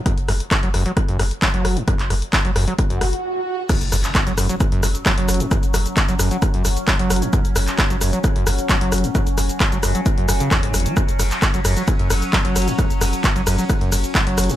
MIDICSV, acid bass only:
0, 0, Header, 1, 2, 480
1, 0, Start_track
1, 0, Tempo, 454545
1, 61, Time_signature, 4, 2, 24, 8
1, 15377, End_track
2, 0, Start_track
2, 0, Title_t, "Acid bass"
2, 0, Program_c, 0, 38
2, 61, Note_on_c, 0, 42, 82
2, 130, Note_off_c, 0, 42, 0
2, 301, Note_on_c, 0, 42, 75
2, 342, Note_off_c, 0, 42, 0
2, 665, Note_on_c, 0, 54, 106
2, 729, Note_off_c, 0, 54, 0
2, 781, Note_on_c, 0, 42, 103
2, 884, Note_off_c, 0, 42, 0
2, 906, Note_on_c, 0, 54, 72
2, 969, Note_off_c, 0, 54, 0
2, 1145, Note_on_c, 0, 42, 100
2, 1241, Note_off_c, 0, 42, 0
2, 1262, Note_on_c, 0, 42, 81
2, 1302, Note_off_c, 0, 42, 0
2, 1502, Note_on_c, 0, 54, 79
2, 1570, Note_off_c, 0, 54, 0
2, 1626, Note_on_c, 0, 54, 102
2, 1866, Note_on_c, 0, 43, 80
2, 1881, Note_off_c, 0, 54, 0
2, 1929, Note_off_c, 0, 43, 0
2, 1981, Note_on_c, 0, 42, 82
2, 2050, Note_off_c, 0, 42, 0
2, 2222, Note_on_c, 0, 42, 76
2, 2263, Note_off_c, 0, 42, 0
2, 2586, Note_on_c, 0, 54, 102
2, 2650, Note_off_c, 0, 54, 0
2, 2702, Note_on_c, 0, 42, 101
2, 2804, Note_off_c, 0, 42, 0
2, 2825, Note_on_c, 0, 54, 75
2, 2889, Note_off_c, 0, 54, 0
2, 3066, Note_on_c, 0, 42, 103
2, 3161, Note_off_c, 0, 42, 0
2, 3182, Note_on_c, 0, 42, 78
2, 3223, Note_off_c, 0, 42, 0
2, 3901, Note_on_c, 0, 42, 83
2, 3970, Note_off_c, 0, 42, 0
2, 4141, Note_on_c, 0, 42, 77
2, 4182, Note_off_c, 0, 42, 0
2, 4506, Note_on_c, 0, 54, 103
2, 4569, Note_off_c, 0, 54, 0
2, 4621, Note_on_c, 0, 42, 100
2, 4724, Note_off_c, 0, 42, 0
2, 4745, Note_on_c, 0, 54, 74
2, 4809, Note_off_c, 0, 54, 0
2, 4985, Note_on_c, 0, 42, 103
2, 5081, Note_off_c, 0, 42, 0
2, 5101, Note_on_c, 0, 42, 78
2, 5142, Note_off_c, 0, 42, 0
2, 5341, Note_on_c, 0, 54, 78
2, 5410, Note_off_c, 0, 54, 0
2, 5466, Note_on_c, 0, 54, 103
2, 5706, Note_on_c, 0, 43, 80
2, 5722, Note_off_c, 0, 54, 0
2, 5769, Note_off_c, 0, 43, 0
2, 5822, Note_on_c, 0, 42, 85
2, 5890, Note_off_c, 0, 42, 0
2, 6061, Note_on_c, 0, 42, 78
2, 6102, Note_off_c, 0, 42, 0
2, 6426, Note_on_c, 0, 54, 106
2, 6489, Note_off_c, 0, 54, 0
2, 6542, Note_on_c, 0, 42, 100
2, 6644, Note_off_c, 0, 42, 0
2, 6666, Note_on_c, 0, 54, 73
2, 6729, Note_off_c, 0, 54, 0
2, 6906, Note_on_c, 0, 42, 103
2, 7001, Note_off_c, 0, 42, 0
2, 7022, Note_on_c, 0, 42, 80
2, 7063, Note_off_c, 0, 42, 0
2, 7261, Note_on_c, 0, 54, 83
2, 7330, Note_off_c, 0, 54, 0
2, 7386, Note_on_c, 0, 54, 103
2, 7627, Note_on_c, 0, 43, 80
2, 7643, Note_off_c, 0, 54, 0
2, 7690, Note_off_c, 0, 43, 0
2, 7742, Note_on_c, 0, 42, 83
2, 7810, Note_off_c, 0, 42, 0
2, 7981, Note_on_c, 0, 42, 80
2, 8022, Note_off_c, 0, 42, 0
2, 8346, Note_on_c, 0, 54, 107
2, 8409, Note_off_c, 0, 54, 0
2, 8462, Note_on_c, 0, 42, 101
2, 8564, Note_off_c, 0, 42, 0
2, 8587, Note_on_c, 0, 54, 76
2, 8650, Note_off_c, 0, 54, 0
2, 8826, Note_on_c, 0, 42, 106
2, 8921, Note_off_c, 0, 42, 0
2, 8942, Note_on_c, 0, 42, 80
2, 8983, Note_off_c, 0, 42, 0
2, 9182, Note_on_c, 0, 54, 79
2, 9250, Note_off_c, 0, 54, 0
2, 9306, Note_on_c, 0, 54, 99
2, 9546, Note_on_c, 0, 43, 78
2, 9562, Note_off_c, 0, 54, 0
2, 9609, Note_off_c, 0, 43, 0
2, 9661, Note_on_c, 0, 42, 83
2, 9730, Note_off_c, 0, 42, 0
2, 9901, Note_on_c, 0, 42, 77
2, 9942, Note_off_c, 0, 42, 0
2, 10265, Note_on_c, 0, 54, 104
2, 10329, Note_off_c, 0, 54, 0
2, 10381, Note_on_c, 0, 42, 101
2, 10484, Note_off_c, 0, 42, 0
2, 10506, Note_on_c, 0, 54, 75
2, 10569, Note_off_c, 0, 54, 0
2, 10746, Note_on_c, 0, 42, 107
2, 10841, Note_off_c, 0, 42, 0
2, 10861, Note_on_c, 0, 42, 102
2, 10902, Note_off_c, 0, 42, 0
2, 10985, Note_on_c, 0, 49, 101
2, 11081, Note_off_c, 0, 49, 0
2, 11101, Note_on_c, 0, 40, 81
2, 11226, Note_on_c, 0, 45, 99
2, 11241, Note_off_c, 0, 40, 0
2, 11341, Note_on_c, 0, 40, 107
2, 11357, Note_off_c, 0, 45, 0
2, 11466, Note_on_c, 0, 54, 77
2, 11482, Note_off_c, 0, 40, 0
2, 11561, Note_off_c, 0, 54, 0
2, 11581, Note_on_c, 0, 42, 82
2, 11650, Note_off_c, 0, 42, 0
2, 11822, Note_on_c, 0, 42, 77
2, 11863, Note_off_c, 0, 42, 0
2, 12185, Note_on_c, 0, 54, 106
2, 12249, Note_off_c, 0, 54, 0
2, 12301, Note_on_c, 0, 42, 104
2, 12404, Note_off_c, 0, 42, 0
2, 12425, Note_on_c, 0, 54, 75
2, 12489, Note_off_c, 0, 54, 0
2, 12665, Note_on_c, 0, 42, 102
2, 12761, Note_off_c, 0, 42, 0
2, 12780, Note_on_c, 0, 42, 80
2, 12822, Note_off_c, 0, 42, 0
2, 13020, Note_on_c, 0, 54, 78
2, 13089, Note_off_c, 0, 54, 0
2, 13145, Note_on_c, 0, 54, 101
2, 13385, Note_on_c, 0, 43, 80
2, 13401, Note_off_c, 0, 54, 0
2, 13449, Note_off_c, 0, 43, 0
2, 13500, Note_on_c, 0, 42, 82
2, 13569, Note_off_c, 0, 42, 0
2, 13741, Note_on_c, 0, 42, 76
2, 13782, Note_off_c, 0, 42, 0
2, 14106, Note_on_c, 0, 54, 109
2, 14170, Note_off_c, 0, 54, 0
2, 14221, Note_on_c, 0, 42, 103
2, 14324, Note_off_c, 0, 42, 0
2, 14346, Note_on_c, 0, 54, 80
2, 14410, Note_off_c, 0, 54, 0
2, 14586, Note_on_c, 0, 42, 101
2, 14681, Note_off_c, 0, 42, 0
2, 14702, Note_on_c, 0, 42, 79
2, 14743, Note_off_c, 0, 42, 0
2, 14942, Note_on_c, 0, 54, 81
2, 15010, Note_off_c, 0, 54, 0
2, 15066, Note_on_c, 0, 54, 106
2, 15306, Note_on_c, 0, 43, 79
2, 15322, Note_off_c, 0, 54, 0
2, 15369, Note_off_c, 0, 43, 0
2, 15377, End_track
0, 0, End_of_file